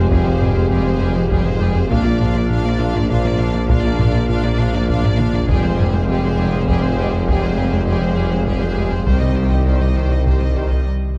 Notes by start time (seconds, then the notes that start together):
Already playing: F1 F2 G#3 C4 G4 G#4 C5 F5
0.11 F2 F3 G3 G4 G#4, taiko
0.25 F3 G#3 C4 G#4 C5
0.41 F2 G3 G4 G#4, taiko low-mid
0.55 F2 G#3 G#4 C5
0.70 F2 F3 G3 G4 G#4
0.85 F3 G#3 C4 G#4 C5
1.00 F2 G3 G#3 G4 G#4
1.15 F3 G#3 C4 G#4 C5, taiko low-mid
1.30 F2 F3 G3 G4 G#4, taiko
1.45 F3 G#3 C4 G#4 C5, taiko low-mid
1.60 F2 G3 G#3 G4 G#4
1.75 F2 G#3 G#4 C5
1.89 A#1 A#2 F3 A#3 D4 F4 F5, taiko
2.04 A#3 D4 F4 D5
2.19 A#2 D4 F4 F5, taiko low-mid
2.34 A#2 A#3 D4 D5
2.49 A#2 A#3 D4 F4 F5
2.64 A#3 D4 F4 D5
2.79 A#2 D4 F4 F5
2.95 A#3 D4 F4 D5, taiko low-mid
3.09 A#2 A#3 D4 F4 F5, taiko
3.24 A#3 D4 F4 D5, taiko low-mid
3.39 A#2 D4 F4 F5
3.54 A#2 A#3 D4 D5
3.69 A#2 A#3 D4 F4 F5, taiko
3.83 A#3 D4 F4 D5
3.99 A#2 D4 F4 F5, taiko low-mid
4.14 A#2 A#3 D4 D5
4.29 A#2 A#3 D4 F4 F5
4.44 A#3 D4 F4 D5
4.59 A#2 D4 F4 F5
4.73 A#3 D4 F4 D5, taiko low-mid
4.89 A#2 A#3 D4 F4 F5, taiko
5.04 A#3 D4 F4 D5, taiko low-mid
5.18 A#2 D4 F4 F5, taiko mid
5.33 A#2 A#3 D4 D5, taiko low
5.48 F1 F2 F3 G3 G#3 C4 G4 G#4 F5, taiko
5.63 F3 G#3 C4 G#4 C5
5.78 F2 G3 G4 G#4, taiko low-mid
5.93 F2 G#3 G#4 C5
6.08 F2 F3 G3 G#3 G4 G#4
6.23 F3 G#3 C4 G#4 C5
6.38 F2 G3 G#3 G4 G#4
6.53 F3 G#3 C4 G#4 C5, taiko low-mid
6.68 F2 F3 G3 G4 G#4, taiko
6.82 F3 G#3 C4 G#4 C5, taiko low-mid
6.98 F2 G3 G#3 G4 G#4
7.13 F2 G#3 G#4 C5
7.27 F2 F3 G3 G4 G#4, taiko
7.42 F3 G#3 C4 G#4 C5
7.57 F2 G3 G4 G#4
7.71 F2 G#3 G#4 C5
7.86 F2 F3 G3 G#3 G4 G#4
8.01 F3 G#3 C4 G#4 C5
8.16 F2 G3 G#3 G4 G#4
8.31 F3 G#3 C4 G#4 C5
8.46 F2 F3 G3 G4 G#4, taiko
8.60 F3 G#3 C4 G#4 C5
8.75 F2 G3 G#3 G4 G#4
8.90 F2 G#3 G#4 C5
9.05 C2 C3 D#3 G3 C4 G4 C5 D#5, taiko
9.20 C3 G3 D#4 D#5
9.35 C2 D#3 G4 C5
9.50 C2 D#3 G3 D#4 D#5
9.66 C2 C3 D#3 G3 D#4 G4 C5
9.81 C3 G3 D#4 D#5
9.96 C2 D#3 G4 C5
10.10 C3 G3 D#4 D#5
10.25 C2 C3 D#3 G4 C5, taiko
10.40 C3 G3 D#4 D#5
10.55 C2 D#3 G3 D#4 G4 C5
10.70 C2 D#3 G3 D#4 D#5